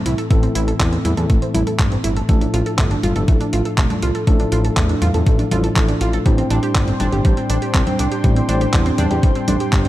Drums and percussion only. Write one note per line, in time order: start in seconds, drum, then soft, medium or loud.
0.06 closed hi-hat loud
0.18 closed hi-hat soft
0.31 kick loud
0.31 closed hi-hat medium
0.43 closed hi-hat soft
0.55 closed hi-hat medium
0.68 closed hi-hat soft
0.80 kick loud
0.80 clap loud
0.80 closed hi-hat medium
0.93 closed hi-hat soft
1.05 closed hi-hat medium
1.05 high conga medium
1.17 closed hi-hat soft
1.30 kick loud
1.30 closed hi-hat medium
1.42 closed hi-hat soft
1.55 closed hi-hat medium
1.55 high conga medium
1.67 closed hi-hat soft
1.79 kick loud
1.79 clap loud
1.79 closed hi-hat medium
1.92 closed hi-hat soft
2.04 closed hi-hat medium
2.17 closed hi-hat soft
2.29 kick loud
2.29 closed hi-hat medium
2.41 closed hi-hat soft
2.54 closed hi-hat medium
2.66 closed hi-hat soft
2.79 kick loud
2.79 clap loud
2.79 closed hi-hat medium
2.91 closed hi-hat soft
3.03 closed hi-hat medium
3.03 high conga medium
3.16 closed hi-hat soft
3.28 kick loud
3.28 closed hi-hat medium
3.41 closed hi-hat soft
3.53 closed hi-hat medium
3.65 closed hi-hat soft
3.78 kick loud
3.78 clap loud
3.78 closed hi-hat medium
3.90 closed hi-hat soft
3.90 high conga medium
4.02 closed hi-hat medium
4.15 closed hi-hat soft
4.27 kick loud
4.27 closed hi-hat medium
4.40 closed hi-hat soft
4.52 closed hi-hat medium
4.65 closed hi-hat soft
4.77 kick loud
4.77 clap loud
4.77 closed hi-hat medium
4.89 closed hi-hat soft
5.02 closed hi-hat medium
5.02 high conga medium
5.14 closed hi-hat soft
5.27 kick loud
5.27 closed hi-hat medium
5.39 closed hi-hat soft
5.51 closed hi-hat medium
5.51 high conga medium
5.64 closed hi-hat soft
5.76 kick loud
5.76 clap loud
5.76 closed hi-hat medium
5.88 closed hi-hat soft
6.01 closed hi-hat medium
6.13 closed hi-hat soft
6.26 kick loud
6.26 closed hi-hat medium
6.38 closed hi-hat soft
6.50 closed hi-hat medium
6.63 closed hi-hat soft
6.75 kick loud
6.75 clap loud
6.75 closed hi-hat medium
6.88 closed hi-hat soft
7.00 closed hi-hat medium
7.00 high conga medium
7.12 closed hi-hat soft
7.25 kick loud
7.25 closed hi-hat medium
7.37 closed hi-hat soft
7.50 closed hi-hat medium
7.62 closed hi-hat soft
7.74 kick loud
7.74 clap loud
7.74 closed hi-hat medium
7.87 closed hi-hat soft
7.87 high conga medium
7.99 closed hi-hat medium
8.12 closed hi-hat soft
8.24 kick loud
8.24 closed hi-hat medium
8.36 closed hi-hat soft
8.49 closed hi-hat medium
8.61 closed hi-hat soft
8.73 kick loud
8.73 clap loud
8.73 closed hi-hat medium
8.86 closed hi-hat soft
8.98 closed hi-hat medium
8.98 high conga medium
9.11 closed hi-hat soft
9.23 kick loud
9.23 closed hi-hat medium
9.35 closed hi-hat soft
9.48 closed hi-hat medium
9.48 high conga medium
9.60 closed hi-hat soft
9.73 kick loud
9.73 clap loud
9.73 closed hi-hat medium
9.85 closed hi-hat soft